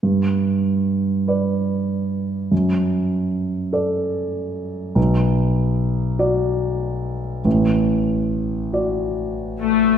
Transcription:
<<
  \new Staff \with { instrumentName = "Grand piano" } { \time 6/8 \key d \major \tempo 4. = 48 g,4. <b' d''>4. | fis,4. <a' d''>4. | b,,4. <fis' d''>4. | a,,4. <fis' d''>4. | }
  \new Staff \with { instrumentName = "Viola section" } { \time 6/8 \key d \major r2. | r2. | r2. | r2 r8 a8 | }
>>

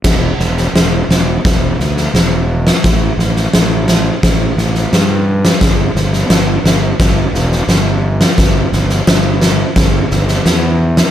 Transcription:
<<
  \new Staff \with { instrumentName = "Fingered electric bass" } { \clef bass \time 4/4 \key e \dorian \tempo 4 = 86 e,,8 e,,8 e,,8 e,,8 e,,8 d,8 e,,4 | a,,8 a,,8 a,,4 a,,8 a,,8 g,4 | g,,8 g,,8 g,,8 g,,8 g,,8 e,,8 g,,4 | g,,8 g,,8 g,,4 g,,8 g,,8 e,4 | }
  \new DrumStaff \with { instrumentName = "Drums" } \drummode { \time 4/4 <cymc bd sn>8 sn16 sn16 sn8 sn8 <bd sn>8 sn16 sn16 sn8. sn16 | <bd sn>8 sn16 sn16 sn8 sn8 <bd sn>8 sn16 sn16 sn8. sn16 | <bd sn>8 sn16 sn16 sn8 sn8 <bd sn>8 sn16 sn16 sn8. sn16 | <bd sn>8 sn16 sn16 sn8 sn8 <bd sn>8 sn16 sn16 sn8. sn16 | }
>>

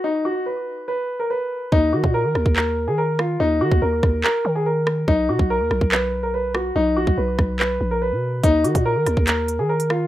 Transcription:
<<
  \new Staff \with { instrumentName = "Grand piano" } { \time 4/4 \key ees \minor \tempo 4 = 143 ees'8 ges'8 ces''4 ces''8. bes'16 ces''4 | ees'8 ges'8 bes'4 bes'8. aes'16 bes'8 f'8 | ees'8 ges'8 bes'4 bes'8. aes'16 bes'4 | dis'8 fis'8 bes'4 b'8. bes'16 b'8 fis'8 |
dis'8 fis'8 b'4 b'8. bes'16 b'4 | ees'8 ges'8 bes'4 bes'8. aes'16 bes'8 f'8 | }
  \new Staff \with { instrumentName = "808-style bass" } { \clef bass \time 4/4 \key ees \minor r1 | ees,8 ees16 bes,8 ees16 ees,16 ees,4 ees4~ ees16 | ees,8 ees16 ees,16 ees,8 ees,8 r8 ees4. | b,,8 b,16 b,,8 dis,16 b,,16 b,,2~ b,,16 |
b,,8 bes,,16 b,,16 b,,8 b,,4 bes,,8. b,8. | ees,8 ees16 bes,8 ees16 ees,16 ees,4 ees4~ ees16 | }
  \new DrumStaff \with { instrumentName = "Drums" } \drummode { \time 4/4 r4 r4 r4 r4 | bd8. bd16 r8 ss16 bd16 hc4 r8 ss8 | r8. bd16 r8 <bd ss>8 hc4 r8 ss8 | bd8. bd16 r8 ss16 bd16 hc4 r8 ss8 |
r8. bd16 r8 <bd ss>8 hc4 r4 | <hh bd>8 hh16 <hh bd>16 r8 <hh ss>16 bd16 <hc hh>8 hh8 r16 hh16 ss8 | }
>>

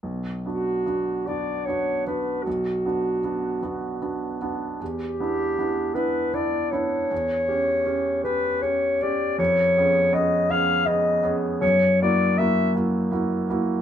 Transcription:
<<
  \new Staff \with { instrumentName = "Clarinet" } { \time 3/4 \key b \minor \tempo 4 = 78 r8 fis'4 d''8 cis''8 b'8 | fis'2~ fis'8 r8 | g'4. b'8 d''8 cis''8~ | cis''4. b'8 cis''8 d''8 |
cis''4 dis''8 eis''8 dis''8 r8 | cis''8 d''8 e''8 r4. | }
  \new Staff \with { instrumentName = "Grand piano" } { \time 3/4 \key b \minor b,,8 <b d' fis'>8 <b d' fis'>8 <b d' fis'>8 <b d' fis'>8 <b d' fis'>8 | b,,8 <b d' fis'>8 <b d' fis'>8 <b d' fis'>8 <b d' fis'>8 <b d' fis'>8 | e,8 <b d' e'>8 <b d' e'>8 <b d' e'>8 <b d' e'>8 <b d' e'>8 | e,8 <cis' g'>8 <cis' g'>8 <cis' g'>8 <cis' g'>8 <cis' g'>8 |
eis,8 <b cis' gis'>8 <b cis' gis'>8 <b cis' gis'>8 <b cis' gis'>8 <b cis' gis'>8 | fis,8 <ais e' fis'>8 <ais e' fis'>8 <ais e' fis'>8 <ais e' fis'>8 <ais e' fis'>8 | }
>>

